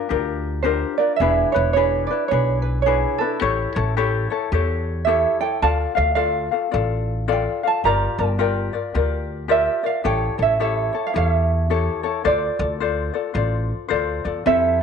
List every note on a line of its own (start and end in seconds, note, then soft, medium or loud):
0.00 0.70 A#4 medium
0.09 0.82 D2 medium
0.09 0.64 D4 medium
0.09 0.64 F4 medium
0.09 0.62 G4 medium
0.09 0.64 A#4 medium
0.63 0.99 D4 medium
0.63 0.98 F4 medium
0.63 0.99 G4 medium
0.63 0.98 A#4 medium
0.63 0.97 C5 medium
0.98 1.20 D4 soft
0.98 1.20 F4 medium
0.98 1.20 A#4 medium
0.98 1.16 D5 medium
1.16 1.42 E1 medium
1.16 1.52 E5 medium
1.20 1.55 D4 medium
1.20 1.54 E4 medium
1.20 1.55 G#4 medium
1.20 1.53 B4 medium
1.52 2.05 E1 medium
1.52 1.75 D4 soft
1.52 1.76 E4 medium
1.52 1.75 B4 medium
1.52 1.72 C#5 medium
1.73 2.10 D4 medium
1.73 2.10 E4 medium
1.73 2.10 G#4 medium
1.73 2.09 B4 medium
1.73 2.06 C#5 medium
2.07 2.31 B4 medium
2.07 2.28 D5 medium
2.11 2.30 D4 soft
2.11 2.31 E4 soft
2.28 3.03 B1 loud
2.28 2.85 D4 medium
2.28 2.85 G#4 medium
2.28 2.62 C#5 medium
2.33 2.86 E4 medium
2.33 2.86 B4 medium
2.62 2.82 B4 medium
2.82 3.20 D4 medium
2.82 3.20 G#4 medium
2.82 3.20 C#5 medium
2.87 3.20 E4 medium
2.87 3.19 B4 medium
3.18 3.40 E4 medium
3.18 5.11 A4 medium
3.18 3.41 B4 medium
3.23 3.41 D4 soft
3.41 3.64 A1 medium
3.41 3.76 E4 medium
3.41 3.74 G4 medium
3.41 3.75 A4 medium
3.41 3.74 C#5 medium
3.75 4.25 A1 loud
3.75 3.96 E4 soft
3.75 3.97 A4 medium
3.75 3.96 C#5 medium
3.97 4.30 E4 medium
3.97 4.30 G4 medium
3.97 4.30 A4 medium
3.97 4.29 C#5 medium
4.30 4.52 E4 soft
4.30 4.52 A4 medium
4.30 4.51 C#5 medium
4.52 5.24 E2 loud
4.52 5.06 E4 medium
4.52 5.05 G4 medium
4.52 5.07 A4 medium
4.52 5.07 C#5 medium
5.05 5.41 E4 medium
5.05 5.41 G4 medium
5.05 5.41 A4 medium
5.05 5.39 C#5 medium
5.05 5.40 E5 medium
5.41 5.62 E4 soft
5.41 5.62 A4 soft
5.41 5.62 C#5 soft
5.41 5.62 G5 medium
5.62 5.85 D2 medium
5.62 5.96 F4 medium
5.62 5.95 A4 medium
5.62 5.97 D5 medium
5.62 5.94 F5 medium
5.62 5.72 A5 medium
5.95 6.46 D2 loud
5.95 6.15 F4 soft
5.95 6.15 A4 soft
5.95 6.16 F5 medium
5.95 6.14 F5 medium
6.15 6.51 F4 medium
6.15 6.51 A4 medium
6.15 6.51 D5 medium
6.15 6.48 F5 medium
6.15 6.50 F5 medium
6.51 6.71 F4 soft
6.51 6.72 A4 medium
6.51 6.72 F5 medium
6.71 7.45 A1 loud
6.71 7.27 F4 medium
6.71 7.27 A4 medium
6.71 7.28 D5 medium
6.71 7.29 F5 medium
7.28 7.62 F4 medium
7.28 7.62 A4 medium
7.28 7.62 D5 medium
7.28 7.62 F5 medium
7.32 7.41 G5 medium
7.63 7.84 F4 soft
7.63 7.84 A4 soft
7.63 7.83 F5 soft
7.67 7.85 A5 medium
7.84 8.06 G1 medium
7.84 8.18 F4 medium
7.84 8.18 G4 medium
7.84 8.18 A#4 medium
7.84 8.17 D5 medium
7.84 8.19 A#5 loud
8.18 8.67 G1 medium
8.18 8.38 F4 soft
8.18 8.39 A#4 soft
8.18 8.38 D5 medium
8.18 8.38 G5 medium
8.39 8.73 F4 medium
8.39 8.73 G4 medium
8.39 8.73 A#4 medium
8.39 8.72 D5 medium
8.39 8.71 G5 medium
8.73 8.94 F4 soft
8.73 8.94 A#4 medium
8.73 8.93 D5 medium
8.94 9.66 D2 medium
8.94 9.48 F4 medium
8.94 9.48 G4 medium
8.94 9.48 A#4 medium
8.94 9.48 D5 medium
9.48 9.83 F4 medium
9.48 9.83 G4 medium
9.48 9.83 A#4 medium
9.48 9.82 D5 medium
9.48 9.85 E5 medium
9.83 10.03 F4 soft
9.83 10.04 A#4 soft
9.83 10.04 D5 medium
9.83 10.05 F5 medium
10.04 10.27 A1 medium
10.04 10.38 E4 medium
10.04 10.38 G4 medium
10.04 10.38 A4 medium
10.04 10.37 C#5 medium
10.04 10.40 G5 loud
10.38 10.88 A1 medium
10.38 10.59 E4 soft
10.38 10.59 A4 soft
10.38 10.58 C#5 medium
10.42 10.59 E5 medium
10.60 10.93 E4 medium
10.60 10.94 G4 medium
10.60 10.93 A4 medium
10.60 10.91 C#5 medium
10.60 11.06 E5 medium
10.93 11.13 E4 soft
10.93 11.14 A4 soft
10.93 11.13 C#5 medium
11.07 11.16 F5 medium
11.13 11.87 E2 loud
11.13 11.69 E4 medium
11.13 11.69 G4 medium
11.13 11.70 A4 medium
11.13 11.70 C#5 medium
11.13 11.28 F5 medium
11.28 12.27 E5 medium
11.70 12.04 E4 medium
11.70 12.04 G4 medium
11.70 12.03 A4 medium
11.70 12.02 C#5 medium
12.03 12.24 E4 medium
12.03 12.24 A4 medium
12.03 12.24 C#5 medium
12.24 12.47 D2 medium
12.24 12.59 F4 medium
12.24 12.58 A4 medium
12.24 12.59 C5 medium
12.24 12.58 D5 medium
12.24 13.87 D5 medium
12.59 13.08 D2 loud
12.59 12.79 F4 soft
12.59 12.80 A4 medium
12.59 12.79 D5 medium
12.80 13.14 F4 medium
12.80 13.13 A4 medium
12.80 13.14 C5 medium
12.80 13.12 D5 medium
13.14 13.34 F4 soft
13.14 13.34 A4 medium
13.14 13.34 D5 medium
13.34 13.70 A1 medium
13.34 13.89 F4 medium
13.34 13.90 A4 medium
13.34 13.88 C5 medium
13.34 13.89 D5 medium
13.88 14.21 D2 medium
13.88 14.24 F4 medium
13.88 14.24 A4 medium
13.88 14.23 C5 medium
13.88 14.23 D5 medium
14.25 14.43 E2 medium
14.25 14.45 F4 soft
14.25 14.45 A4 medium
14.25 14.45 D5 medium
14.46 14.83 F2 medium
14.46 14.80 C4 medium
14.46 14.80 E4 medium
14.46 14.79 G4 medium
14.46 14.80 A4 medium
14.46 14.83 E5 loud